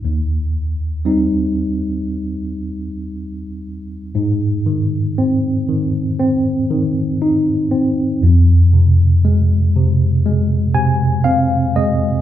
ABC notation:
X:1
M:4/4
L:1/8
Q:1/4=59
K:Ab
V:1 name="Tine electric piano" clef=bass
E,,2 [G,CE]6 | A,, E, C E, C E, E C | F,, C, A, C, A, [C,a] [Cf] [A,e] |]